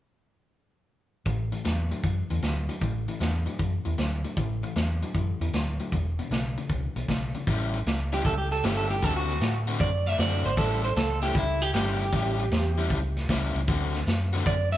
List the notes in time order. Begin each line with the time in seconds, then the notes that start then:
1.26 A1 A2 E3, kick, closed hi-hat
1.52 A2 E3, closed hi-hat
1.65 E2 A2 F#3, snare, closed hi-hat
1.91 A2 F#3, closed hi-hat
2.04 F#2 A2 E3, kick, closed hi-hat
2.30 E2 A2 E3, closed hi-hat
2.42 D2 A2 F#3, snare, closed hi-hat
2.69 A2 F#3, closed hi-hat
2.81 A1 A2 E3, kick, closed hi-hat
3.08 A2 E3, closed hi-hat
3.20 E2 A2 F#3, snare, closed hi-hat
3.46 A2 F#3, closed hi-hat
3.59 F#2 A2 E3, kick, closed hi-hat
3.85 E2 A2 E3, closed hi-hat
3.98 D2 A2 F#3, snare, closed hi-hat
4.24 A2 F#3, closed hi-hat
4.37 A1 A2 E3, kick, closed hi-hat
4.63 A2 E3, closed hi-hat
4.76 E2 A2 F#3, snare, closed hi-hat
5.02 A2 F#3, closed hi-hat
5.14 F#2 A2 E3, kick, closed hi-hat
5.40 E2 A2 E3, closed hi-hat
5.53 D2 A2 F#3, snare, closed hi-hat
5.79 A2 F#3, closed hi-hat
5.92 E1 E2 B2, kick, closed hi-hat
6.19 E2 B2, closed hi-hat
6.30 B1 E2 C#3, snare, closed hi-hat
6.57 E2 C#3, closed hi-hat
6.69 C#2 E2 B2, kick, closed hi-hat
6.96 B1 E2 B2, closed hi-hat
7.08 B1 E2 C#3, kick, snare, closed hi-hat
7.34 E2 C#3, closed hi-hat
7.47 A1 A2 G3 C#4 E4, kick, closed hi-hat
7.74 closed hi-hat
7.86 C#2, snare, closed hi-hat
8.13 A2 G3 C#4 E4 G4, snare, closed hi-hat
8.25 C#2 A4, kick, closed hi-hat
8.38 G4
8.52 A4, closed hi-hat
8.63 G1 A2 G3 C#4 E4 G4, snare, closed hi-hat
8.77 A4
8.90 G4, closed hi-hat
9.02 D2 D3 A3 C4 F#4 A4, kick, closed hi-hat
9.17 F#4
9.29 snare, closed hi-hat
9.41 A2, snare, closed hi-hat
9.67 D3 A3 C4 F#4, closed hi-hat
9.80 F#2 D5, kick, closed hi-hat
10.06 E5, snare, closed hi-hat
10.19 F#2 D3 A3 C4 F#4 D5, snare, closed hi-hat
10.44 G#1 C5, closed hi-hat
10.57 A1 A2 G3 C#4 E4 A4, kick, snare, closed hi-hat
10.84 C5, closed hi-hat
10.96 C#2 A4, snare, closed hi-hat
11.22 A2 G3 C#4 E4 G4, snare, closed hi-hat
11.35 C#2 E4, kick, closed hi-hat
11.61 G4, closed hi-hat
11.74 G1 A2 G3 C#4 E4 G4, snare, closed hi-hat
12.00 closed hi-hat
12.13 A1 A2 G3 C#4 E4, kick, closed hi-hat
12.39 closed hi-hat
12.51 E2, snare, closed hi-hat
12.78 A2 G3 C#4 E4, closed hi-hat
12.90 C#2, kick, closed hi-hat
13.17 snare, closed hi-hat
13.29 C#2 A2 G3 C#4 E4, kick, snare, closed hi-hat
13.55 C#2, closed hi-hat
13.68 D2 D3 A3 C4 F#4, kick, closed hi-hat
13.95 snare, closed hi-hat
14.07 F#2, snare, closed hi-hat
14.33 D3 A3 C4 F#4, snare, closed hi-hat
14.46 F#2 D5, kick, closed hi-hat
14.72 E5, snare, closed hi-hat